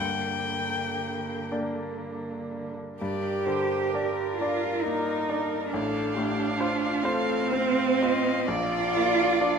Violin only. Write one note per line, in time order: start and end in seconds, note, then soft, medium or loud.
0.00 1.51 G5 medium
3.01 3.48 D5 soft
3.46 3.95 C5 soft
3.93 5.74 A#4 medium
5.72 6.16 A4 medium
6.15 6.59 G4 medium
6.60 7.04 F4 medium
7.03 7.52 A4 medium
7.50 8.03 C5 medium
8.01 8.49 D#5 medium
8.48 9.59 D5 medium